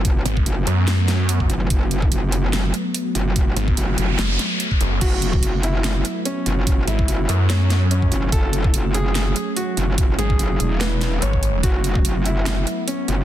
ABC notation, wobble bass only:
X:1
M:4/4
L:1/8
Q:"Swing 16ths" 1/4=145
K:F#m
V:1 name="Wobble bass" clef=bass
F,,, z F,,, z4 F,,, | F,,,2 F,,,3 z2 F,,,- | F,,, z F,,, F,,, z4 | F,,,2 F,,,3 z2 F,,,- |
F,,, z F,,, z4 F,,, | F,,,2 F,,,3 z2 F,,,- | F,,, z F,,, E,,,3 z2 | F,,,2 F,,,3 z2 F,,, |]